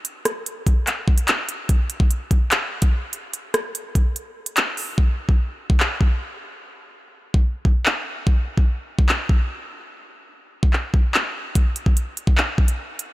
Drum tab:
HH |x-x-x-x-x--xx-x-|x-x-x-x-x--x--x-|x-x-x-x-x--xx-o-|----------------|
CP |--------x---x---|--------x-------|------------x---|--------x-------|
SD |--r-------------|----------------|--r-------------|----------------|
BD |------o---o-----|o--o--o----o----|------o---------|o--o---o--o-----|

HH |----------------|----------------|----------------|x-x-x-x----x--x-|
CP |------------x---|--------x-------|--------x---x---|--------x-------|
SD |----------------|----------------|----------------|----------------|
BD |-------o--o-----|o--o---o--o-----|-------o--o-----|o--o---o--o-----|